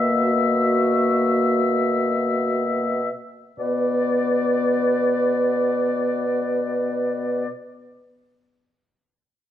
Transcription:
Already playing: bassoon B2, french horn A#3, oboe E5
0.21 clarinet F#4
3.58 bassoon B2, french horn B3, clarinet B4, oboe D5

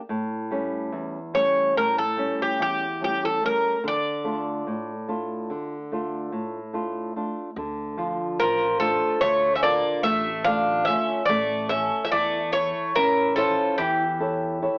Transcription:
0.09 nylon-string guitar A2
0.51 nylon-string guitar G3 A3 C#4
0.92 nylon-string guitar E2
1.34 nylon-string guitar G3 A3 C#4, bouzouki C#5
1.77 nylon-string guitar A2, bouzouki A#4
1.98 bouzouki A4
2.17 nylon-string guitar G3 A3 C#4
2.42 bouzouki G4
2.59 nylon-string guitar E2, bouzouki G4
3.01 nylon-string guitar G3 A3 C#4, bouzouki G4
3.25 bouzouki A4
3.43 nylon-string guitar G3 A3 C#4, bouzouki A#4
3.84 nylon-string guitar D3, bouzouki D5
4.24 nylon-string guitar A3 D4 F4
4.67 nylon-string guitar A2
5.08 nylon-string guitar A3 D4 F4
5.50 nylon-string guitar D3
5.92 nylon-string guitar A3 D4 F4
6.33 nylon-string guitar A2
6.74 nylon-string guitar A3 D4 F4
7.16 nylon-string guitar A3 D4 F4
7.56 upright bass D2, nylon-string guitar D3
7.97 nylon-string guitar F3 D4 F4
8.39 upright bass A1, bouzouki F3 A#4
8.80 bouzouki F3 A4, nylon-string guitar A3 D4 F4
9.21 upright bass D2, nylon-string guitar D3, bouzouki A3 C#5
9.55 bouzouki C#4 E5
9.63 bouzouki A#3 D5, nylon-string guitar D4 F4 A4
10.03 upright bass A1, nylon-string guitar A3, bouzouki A3 E5
10.44 nylon-string guitar D3 A3 F4, bouzouki D4 F5
10.85 nylon-string guitar A3 F4, bouzouki C#4 E5
11.26 upright bass A1, nylon-string guitar A3, bouzouki A3 D5
11.69 bouzouki C#4 E5, nylon-string guitar E4 A4 E5
12.04 bouzouki C#4 E5
12.12 upright bass E2, nylon-string guitar E3, bouzouki A3 D5
12.52 bouzouki A3 C#5, nylon-string guitar E4 C#5
12.95 upright bass A1, bouzouki E3 A#4, nylon-string guitar C#4
13.36 bouzouki F3 A4, nylon-string guitar E4 A4 C#5
13.78 upright bass E2, bouzouki E3 G4, nylon-string guitar E3
14.20 nylon-string guitar E4 A4 C#5
14.62 nylon-string guitar E4 A4 C#5

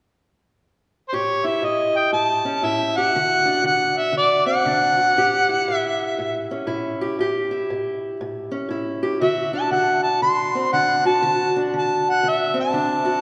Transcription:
1.09 steel-string acoustic guitar A2, harmonica C5
1.13 steel-string acoustic guitar G4, harmonica C#5
1.44 steel-string acoustic guitar E4, harmonica E5
1.62 steel-string acoustic guitar A2, harmonica D#5
1.97 harmonica G5
2.13 steel-string acoustic guitar A2, harmonica A5
2.45 steel-string acoustic guitar C#4
2.63 steel-string acoustic guitar A2 E4, harmonica E5
2.97 steel-string acoustic guitar G4, harmonica F#5
3.16 steel-string acoustic guitar D3 F#4
3.45 steel-string acoustic guitar D4
3.64 steel-string acoustic guitar D3, harmonica F#5
3.97 harmonica E5
4.12 steel-string acoustic guitar D3
4.17 harmonica D5
4.46 steel-string acoustic guitar C4, harmonica F#5
4.66 steel-string acoustic guitar D3 D4
4.97 steel-string acoustic guitar F#4
5.17 steel-string acoustic guitar A2 G4
5.49 steel-string acoustic guitar E4
5.68 steel-string acoustic guitar A2
5.76 harmonica E5
6.19 steel-string acoustic guitar A2
6.51 steel-string acoustic guitar C#4
6.67 steel-string acoustic guitar A2 E4
7.01 steel-string acoustic guitar G4
7.19 steel-string acoustic guitar A2 G4
7.51 steel-string acoustic guitar E4
7.70 steel-string acoustic guitar A2
8.21 steel-string acoustic guitar A2
8.51 steel-string acoustic guitar C#4
8.69 steel-string acoustic guitar A2 E4
9.03 steel-string acoustic guitar G4
9.21 steel-string acoustic guitar D3 F#4, harmonica E5
9.53 steel-string acoustic guitar D4, harmonica A5
9.71 steel-string acoustic guitar D3, harmonica F#5
10.03 harmonica A5
10.22 steel-string acoustic guitar D3, harmonica C6
10.55 steel-string acoustic guitar C4
10.73 steel-string acoustic guitar D3 D4, harmonica F#5
11.05 steel-string acoustic guitar F#4, harmonica A5
11.22 steel-string acoustic guitar D3 F#4
11.56 steel-string acoustic guitar D4
11.74 steel-string acoustic guitar D3
11.78 harmonica A5
12.10 harmonica F#5
12.23 steel-string acoustic guitar D3
12.29 harmonica E5
12.54 steel-string acoustic guitar C4
12.60 harmonica A5
12.73 steel-string acoustic guitar D3 D4
13.05 steel-string acoustic guitar F#4

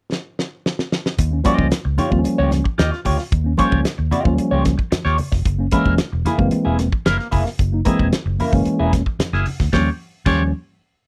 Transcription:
0.12 snare
0.39 snare
0.66 snare
0.79 snare
0.92 snare
1.06 snare
1.18 fingered electric bass D#2, kick, closed hi-hat, muted conga
1.31 tine electric piano A#3 C#4
1.44 tine electric piano F3 G3 A#3 C#4, clean electric guitar F4 G4 D#5, kick, closed hi-hat, muted conga, high conga
1.58 fingered electric bass C#2, kick, high conga
1.72 snare, closed hi-hat
1.85 fingered electric bass C#2, muted clean electric guitar stroke
1.97 tine electric piano A#3 D#4, clean electric guitar F4 G4 C#5, closed hi-hat, muted conga, high conga, low conga
2.11 fingered electric bass D#2, tine electric piano F3 G3 A#3 C4, muted clean electric guitar stroke, kick
2.19 tine electric piano C#4
2.24 muted clean electric guitar stroke, muted fingered electric bass stroke, closed hi-hat, muted conga
2.38 fingered electric bass C#2, clean electric guitar F4 G4 C#5
2.51 muted clean electric guitar stroke, snare, closed hi-hat, muted conga, high conga
2.64 muted clean electric guitar stroke, kick
2.78 fingered electric bass D#2, clean electric guitar F4 G4 D#5, snare, closed hi-hat, high conga
2.92 muted clean electric guitar stroke, snare
3.05 fingered electric bass D2, clean electric guitar F4 G4 C#5, kick, open hi-hat, low conga
3.19 muted clean electric guitar stroke, snare
3.32 fingered electric bass D#2, kick, closed hi-hat, muted conga
3.44 tine electric piano A#3 C#4
3.57 tine electric piano F3 G3 A#3 C#4, clean electric guitar F4 G4 C#5, kick, closed hi-hat, high conga
3.72 fingered electric bass C#2, kick, high conga
3.85 snare, closed hi-hat
3.98 fingered electric bass D#2, muted clean electric guitar stroke
4.11 tine electric piano A#3 C4, clean electric guitar F4 G4 D#5, closed hi-hat, high conga, low conga
4.24 fingered electric bass D#2, tine electric piano F3 F#3 A#3 C#4, muted clean electric guitar stroke, kick
4.32 tine electric piano G3
4.38 muted clean electric guitar stroke, muted fingered electric bass stroke, closed hi-hat
4.51 fingered electric bass C#2, clean electric guitar F4 G4 C#5
4.65 muted clean electric guitar stroke, kick, snare, closed hi-hat, high conga
4.78 muted clean electric guitar stroke, kick
4.91 muted clean electric guitar stroke, muted fingered electric bass stroke, snare, closed hi-hat, muted conga, high conga
5.05 fingered electric bass D#2, clean electric guitar F4 G4 C#5, snare
5.18 muted clean electric guitar stroke, open hi-hat, muted conga, low conga
5.32 fingered electric bass F1, muted clean electric guitar stroke, kick, snare
5.45 fingered electric bass F#1, kick, closed hi-hat
5.59 tine electric piano A#3 C#4
5.71 tine electric piano E3 G#3 A#3 C#4, clean electric guitar A#3 E4 A#4, kick, closed hi-hat, muted conga, high conga
5.86 fingered electric bass E1, kick, high conga
5.98 snare, closed hi-hat
6.13 fingered electric bass E1, muted clean electric guitar stroke
6.25 tine electric piano A#3 E4, clean electric guitar A#3 E4 G#4, snare, closed hi-hat, muted conga, high conga, low conga
6.38 fingered electric bass F#1, tine electric piano E3 G#3 A#3 C4, muted clean electric guitar stroke, kick
6.51 muted clean electric guitar stroke, muted fingered electric bass stroke, closed hi-hat, muted conga
6.65 fingered electric bass E1, clean electric guitar A#3 E4 G#4
6.78 muted clean electric guitar stroke, snare, closed hi-hat, muted conga, high conga
6.92 muted clean electric guitar stroke, kick
7.06 fingered electric bass F#1, clean electric guitar A#3 E4 A#4, snare, closed hi-hat, high conga
7.18 muted clean electric guitar stroke, snare
7.31 fingered electric bass F1, clean electric guitar A#3 E4 G#4, kick, open hi-hat, low conga
7.45 muted clean electric guitar stroke, snare
7.59 fingered electric bass F#1, kick, closed hi-hat, muted conga
7.72 tine electric piano A#3 D#4
7.85 tine electric piano E3 G#3 A#3 C4, clean electric guitar A#3 E4 G#4, kick, closed hi-hat, muted conga, high conga
7.99 fingered electric bass E1, kick, high conga
8.12 snare, closed hi-hat, muted conga
8.26 fingered electric bass F#1, muted clean electric guitar stroke
8.38 tine electric piano A#3 C#4, clean electric guitar A#3 E4 A#4, open hi-hat, muted conga, high conga, low conga
8.52 fingered electric bass F#1, tine electric piano E3 G#3 A#3 C#4, muted clean electric guitar stroke, kick
8.65 muted fingered electric bass stroke, muted clean electric guitar stroke, closed hi-hat, muted conga
8.79 fingered electric bass E1, clean electric guitar A#3 E4 G#4
8.93 muted clean electric guitar stroke, kick, snare, closed hi-hat, high conga
9.06 muted clean electric guitar stroke, kick
9.19 muted fingered electric bass stroke, muted clean electric guitar stroke, snare, closed hi-hat, muted conga, high conga
9.33 fingered electric bass F#1, clean electric guitar A#3 E4 G#4, snare
9.46 muted clean electric guitar stroke, open hi-hat, muted conga, low conga
9.60 fingered electric bass D2, muted clean electric guitar stroke, kick, snare
9.73 fingered electric bass D#2, tine electric piano F3 G3 A#3 C#4, clean electric guitar F4 G4 C#5, kick, snare, high conga
10.26 fingered electric bass D#2, tine electric piano F3 G3 A#3 C#4, clean electric guitar F4 G4 C#5, kick, crash, high conga

